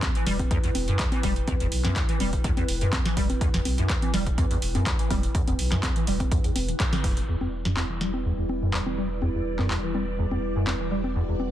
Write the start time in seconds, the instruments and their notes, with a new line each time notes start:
Already playing: ambient pad E4 B4 G5
0.02 acid bass E2, kick, clap, closed hi-hat, high conga
0.15 acid bass E3, closed hi-hat
0.27 sub bass E1, acid bass G3, snare, open hi-hat
0.39 kick, closed hi-hat, high conga
0.51 acid bass E2, kick, closed hi-hat
0.64 acid bass E2, closed hi-hat
0.75 sub bass E1, open hi-hat, high conga
0.88 acid bass F#2, closed hi-hat
0.99 acid bass E2, kick, clap, closed hi-hat
1.12 acid bass E3, closed hi-hat, high conga
1.23 sub bass E1, acid bass G3, kick, open hi-hat
1.36 closed hi-hat
1.48 acid bass E2, kick, closed hi-hat, high conga
1.60 sub bass E1, acid bass E2, closed hi-hat
1.72 sub bass B1, open hi-hat
1.85 acid bass F#2, snare, clap, closed hi-hat, high conga
1.96 acid bass E2, kick, clap, closed hi-hat
2.09 acid bass E3, closed hi-hat
2.20 sub bass E1, acid bass G3, open hi-hat, high conga
2.33 kick, closed hi-hat
2.44 acid bass E2, kick, closed hi-hat
2.57 acid bass E2, closed hi-hat, high conga
2.68 sub bass E1, open hi-hat
2.81 acid bass F#2, closed hi-hat
2.93 kick, clap, closed hi-hat, high conga
3.05 acid bass E3, snare, closed hi-hat
3.17 sub bass E1, acid bass G3, kick, open hi-hat
3.30 closed hi-hat, high conga
3.41 acid bass E2, kick, closed hi-hat
3.54 sub bass E1, acid bass E2, snare, closed hi-hat
3.65 sub bass B1, open hi-hat, high conga
3.78 acid bass F#2, closed hi-hat
3.90 acid bass E2, kick, clap, closed hi-hat
4.02 acid bass E3, closed hi-hat, high conga
4.14 sub bass E1, acid bass G3, snare, open hi-hat
4.26 kick, closed hi-hat
4.38 acid bass E2, kick, closed hi-hat, high conga
4.51 acid bass E2, closed hi-hat
4.62 sub bass E1, open hi-hat
4.75 acid bass F#2, closed hi-hat, high conga
4.86 acid bass E2, kick, clap, closed hi-hat
4.99 acid bass E3, closed hi-hat
5.10 sub bass E1, acid bass G3, kick, open hi-hat, high conga
5.23 closed hi-hat
5.35 acid bass E2, kick, closed hi-hat
5.47 sub bass E1, acid bass E2, closed hi-hat, high conga
5.59 sub bass B1, open hi-hat
5.72 acid bass F#2, snare, clap, closed hi-hat
5.83 acid bass E2, kick, clap, closed hi-hat, high conga
5.96 acid bass E3, closed hi-hat
6.07 sub bass E1, acid bass G3, open hi-hat
6.20 kick, closed hi-hat, high conga
6.31 acid bass E2, kick, closed hi-hat
6.44 acid bass E2, closed hi-hat
6.56 sub bass E1, open hi-hat, high conga
6.68 acid bass E3, closed hi-hat
6.80 acid bass F#2, kick, clap, closed hi-hat
6.93 acid bass D3, snare, closed hi-hat, high conga
7.04 sub bass E1, acid bass E2, kick, open hi-hat
7.17 acid bass E3, closed hi-hat
7.28 sub bass E1, acid bass E2, string machine G3 E4 D5, ambient pad E4
7.41 acid bass E2, high conga
7.53 ambient pad B4
7.65 acid bass F#2, snare
7.77 acid bass E2, clap, high conga
7.90 acid bass E3
8.01 acid bass G3, snare
8.14 high conga
8.25 acid bass E2
8.38 acid bass E2
8.49 high conga
8.62 acid bass F#2
8.74 acid bass E2, clap
8.86 acid bass E3, high conga
8.98 acid bass G3
9.22 acid bass E2, high conga
9.35 acid bass E2
9.59 acid bass F#2, clap, high conga
9.70 acid bass E2, clap
9.83 acid bass E3
9.94 acid bass G3, high conga
10.19 acid bass E2
10.31 acid bass E2, high conga
10.56 acid bass F#2
10.67 acid bass E2, clap, high conga
10.80 acid bass E3
10.91 acid bass G3
11.04 high conga
11.15 acid bass E2, string machine F#4
11.28 acid bass E2
11.40 high conga